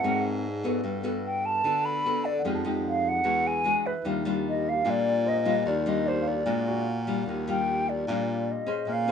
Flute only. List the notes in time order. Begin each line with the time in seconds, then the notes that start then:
Already playing: F#5
1.26 G5
1.46 A5
1.85 B5
2.25 D5
2.89 F5
3.09 F#5
3.47 G#5
3.86 B4
4.49 D#5
4.69 F5
4.90 D5
5.28 D#5
5.68 D5
5.88 D#5
6.08 C5
6.28 D5
7.50 G5
7.89 D5
8.51 D#5
8.93 F5